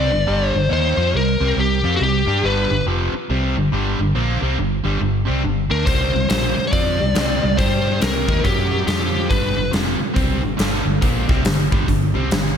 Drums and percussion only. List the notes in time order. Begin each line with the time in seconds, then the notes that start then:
5.87 kick, open hi-hat
6.30 snare, open hi-hat
6.73 kick, open hi-hat
7.15 snare, open hi-hat
7.59 kick, open hi-hat
8.01 snare, open hi-hat
8.29 kick
8.45 kick, open hi-hat
8.88 snare, open hi-hat
9.31 kick, open hi-hat
9.73 snare, open hi-hat
10.16 kick, open hi-hat
10.59 snare, open hi-hat
10.74 snare
11.02 kick, open hi-hat
11.29 kick, snare
11.45 snare, open hi-hat
11.72 kick
11.88 kick, open hi-hat
12.31 snare, open hi-hat
12.46 snare